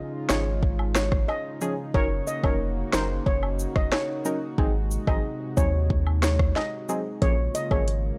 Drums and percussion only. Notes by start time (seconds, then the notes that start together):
0.29 cross-stick, snare, cabasa
0.63 kick
0.79 high woodblock
0.95 cross-stick, snare, cabasa
1.12 kick, cross-stick
1.29 high woodblock
1.61 cabasa
1.94 kick
2.27 cabasa
2.44 kick, high woodblock
2.93 cross-stick, snare, cabasa
3.26 kick
3.43 high woodblock
3.59 cabasa
3.76 kick, cross-stick
3.92 cross-stick, snare, high woodblock
4.25 cabasa
4.58 kick
4.91 cabasa
5.07 kick, high woodblock
5.57 kick, cabasa
5.90 kick
6.07 high woodblock
6.22 cross-stick, snare, cabasa
6.39 kick, cross-stick
6.56 snare, high woodblock
6.89 cabasa
7.22 kick, closed hi-hat
7.55 closed hi-hat, cabasa
7.71 kick, high woodblock
7.88 closed hi-hat